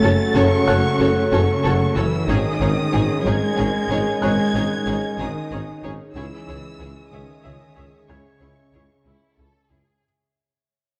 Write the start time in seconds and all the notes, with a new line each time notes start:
Already playing: C#3 F#3 A3 C#4 F#4 A4 C#5 B5 A6
0.03 F#1 C#4 F#4 A4 C#5
0.35 F#1 C#3 C#4 F#4 A4 C#5 C#6
0.67 F#1 C#4 F#4 A4 C#5 F#5 F#6
0.99 F#1 C#4 F#4 A4 C#5
1.32 F#1 C#3 C#4 F#4 A4 C#5 C#6
1.64 F#1 C#4 F#4 A4 C#5
1.96 F#1 E3 C#4 F#4 A4 C#5 E6
2.28 G#1 D#3 G#3 C#4 D#4 G#4 C#5 D#6
2.61 G#1 C#4 D#4 G#4 C#5
2.92 G#1 C#4 D#4 G#4 C#5
3.25 G#1 G#3 C#4 D#4 G#4 C#5 G#6
3.57 G#1 C#4 D#4 G#4 C#5
3.90 G#1 C#4 D#4 G#4 C#5
4.22 G#1 G#3 C#4 D#4 G#4 C#5 F#6 G#6
4.54 G#1 C#4 D#4 G#4 C#5
4.86 G#1 C#4 D#4 G#4 C#5
5.18 G#1 D#3 C#4 D#4 G#4 C#5 D#6
5.51 G#1 C#4 D#4 G#4 C#5
5.83 G#1 C#4 D#4 G#4 C#5
6.15 C#2 C#3 E3 G#3 C#4 E4 G#4 C#5 E5 E6
6.48 C#2 C#4 E4 G#4 C#5
6.79 C#2 C#4 E4 G#4 C#5
7.12 C#2 D#3 C#4 G#4 C#5 E5 D#6
7.44 C#2 C#4 G#4 C#5 E5
7.76 C#2 C#4 G#4 C#5 E5
8.08 C#2 C#3 C#4 E4 G#4 C#5 C#6 G#6
8.40 C#2 C#4 E4 G#4 C#5
8.73 C#2 C#4 E4 G#4 C#5
9.05 C#2 C#4 E4
9.37 C#2 C#4 E4 A4
9.69 C#2 C#4 E4 G#4